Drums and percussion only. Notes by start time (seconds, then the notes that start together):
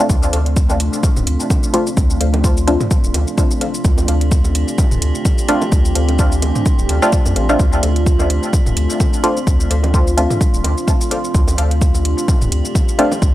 0.10 kick, shaker
0.23 shaker
0.33 closed hi-hat, low bongo
0.46 closed hi-hat
0.56 kick, shaker
0.70 low bongo, shaker
0.80 closed hi-hat
0.93 shaker
1.03 kick, shaker
1.16 mid tom, low bongo, shaker
1.27 closed hi-hat
1.40 shaker
1.50 kick, low bongo, shaker
1.63 shaker
1.74 closed hi-hat
1.87 shaker
1.97 kick, low bongo, shaker
2.10 shaker
2.21 closed hi-hat
2.34 closed hi-hat, low bongo
2.44 kick, shaker
2.57 shaker
2.68 closed hi-hat
2.81 mid tom, low bongo, shaker
2.91 kick, shaker
3.04 shaker
3.14 closed hi-hat, low bongo
3.28 shaker
3.38 kick, shaker
3.51 shaker
3.61 closed hi-hat, low bongo
3.74 shaker
3.85 kick, shaker
3.98 low bongo, shaker
4.08 closed hi-hat
4.21 closed hi-hat
4.32 kick, shaker
4.45 low bongo, shaker
4.55 closed hi-hat
4.68 shaker
4.78 kick, low bongo, shaker
4.91 mid tom, shaker
5.02 closed hi-hat
5.15 shaker
5.25 kick, low bongo, shaker
5.38 shaker
5.49 closed hi-hat
5.62 low bongo, shaker
5.72 kick, shaker
5.85 shaker
5.95 closed hi-hat
6.09 closed hi-hat, low bongo
6.19 kick, shaker
6.32 shaker
6.42 closed hi-hat, low bongo
6.55 mid tom, shaker
6.66 kick, shaker
6.79 shaker
6.89 closed hi-hat, low bongo
7.02 shaker
7.13 kick, shaker
7.26 low bongo, shaker
7.36 closed hi-hat
7.49 shaker
7.60 kick, shaker
7.73 shaker
7.83 closed hi-hat, low bongo
7.96 closed hi-hat
8.06 kick, shaker
8.20 low bongo, shaker
8.30 closed hi-hat
8.43 shaker
8.53 kick, shaker
8.66 mid tom, low bongo, shaker
8.77 closed hi-hat
8.90 shaker
9.00 kick, low bongo, shaker
9.13 shaker
9.24 closed hi-hat
9.37 shaker
9.47 kick, low bongo, shaker
9.60 shaker
9.71 closed hi-hat
9.84 closed hi-hat, low bongo
9.94 kick, shaker
10.07 shaker
10.18 closed hi-hat
10.31 mid tom, low bongo, shaker
10.41 kick, shaker
10.54 shaker
10.64 closed hi-hat, low bongo
10.78 shaker
10.88 kick, shaker
11.01 shaker
11.11 closed hi-hat, low bongo
11.24 shaker
11.35 kick, shaker
11.48 low bongo, shaker
11.58 closed hi-hat
11.71 closed hi-hat
11.81 kick, shaker
11.95 low bongo, shaker
12.05 closed hi-hat
12.18 shaker
12.28 kick, low bongo, shaker
12.41 mid tom, shaker
12.52 closed hi-hat
12.65 shaker
12.75 kick, low bongo, shaker
12.89 shaker
12.99 closed hi-hat
13.12 low bongo, shaker
13.22 kick, shaker